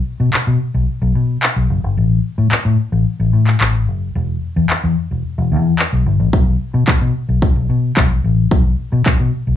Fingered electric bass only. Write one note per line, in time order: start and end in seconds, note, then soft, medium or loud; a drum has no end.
0.20 0.30 B2 medium
0.33 muted fingered electric bass stroke soft
0.47 0.58 B2 medium
0.74 0.85 B1 medium
1.02 1.12 B1 medium
1.15 1.36 B2 medium
1.56 1.67 B1 medium
1.70 1.80 F#1 medium
1.84 1.94 G1 medium
1.97 2.18 A1 medium
2.38 2.49 A2 medium
2.52 muted fingered electric bass stroke soft
2.65 2.76 A2 medium
2.92 3.03 A1 medium
3.20 3.30 A1 medium
3.33 3.54 A2 medium
3.61 3.88 A1 medium
3.88 4.09 F#1 medium
4.15 4.36 E1 loud
4.56 4.67 E2 medium
4.70 muted fingered electric bass stroke soft
4.83 4.94 E2 loud
5.11 5.21 E1 medium
5.38 5.53 E1 loud
5.52 5.73 E2 medium
5.93 6.03 B1 medium
6.06 6.17 G1 medium
6.20 6.30 A1 medium
6.33 6.54 B1 loud
6.74 6.85 B2 medium
6.88 muted fingered electric bass stroke soft
7.02 7.12 B2 loud
7.29 7.39 B1 medium
7.56 7.67 B1 medium
7.70 7.91 B2 loud
7.97 8.18 B1 medium
8.24 8.45 A1 medium
8.52 8.73 B1 medium
8.92 9.03 B2 loud
9.06 muted fingered electric bass stroke soft
9.20 9.30 B2 medium
9.47 9.56 B1 medium